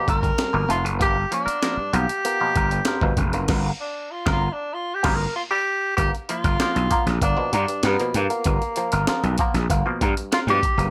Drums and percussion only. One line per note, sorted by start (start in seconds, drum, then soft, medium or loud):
0.08 kick loud
0.08 closed hi-hat medium
0.23 kick loud
0.23 closed hi-hat medium
0.38 snare loud
0.38 closed hi-hat medium
0.70 closed hi-hat medium
0.86 closed hi-hat soft
1.01 kick loud
1.01 closed hi-hat loud
1.32 closed hi-hat medium
1.48 closed hi-hat medium
1.63 snare loud
1.63 closed hi-hat medium
1.94 closed hi-hat medium
2.09 closed hi-hat medium
2.25 closed hi-hat loud
2.56 kick medium
2.56 closed hi-hat medium
2.71 closed hi-hat medium
2.85 snare loud
2.85 closed hi-hat medium
3.01 kick loud
3.17 kick medium
3.17 closed hi-hat medium
3.33 closed hi-hat medium
3.48 kick loud
3.48 snare loud
3.48 crash medium
4.26 kick loud
4.26 snare loud
5.04 kick loud
5.04 snare loud
5.04 crash medium
5.98 kick loud
5.98 closed hi-hat loud
6.15 closed hi-hat soft
6.29 closed hi-hat medium
6.44 kick loud
6.44 closed hi-hat medium
6.60 snare loud
6.60 closed hi-hat medium
6.76 closed hi-hat soft
6.91 kick medium
6.91 closed hi-hat medium
7.07 snare soft
7.07 closed hi-hat medium
7.22 kick medium
7.22 closed hi-hat loud
7.53 closed hi-hat medium
7.68 closed hi-hat medium
7.83 snare loud
7.83 closed hi-hat medium
8.00 closed hi-hat soft
8.14 closed hi-hat medium
8.30 closed hi-hat soft
8.44 kick loud
8.44 closed hi-hat loud
8.62 closed hi-hat soft
8.76 closed hi-hat medium
8.92 closed hi-hat medium
9.07 snare loud
9.07 closed hi-hat medium
9.24 closed hi-hat soft
9.38 kick medium
9.38 closed hi-hat medium
9.55 snare soft
9.55 closed hi-hat medium
9.70 kick medium
9.70 closed hi-hat loud
10.01 kick loud
10.01 closed hi-hat medium
10.17 closed hi-hat medium
10.32 snare loud
10.32 closed hi-hat medium
10.48 closed hi-hat soft
10.63 kick loud
10.63 closed hi-hat medium
10.79 closed hi-hat medium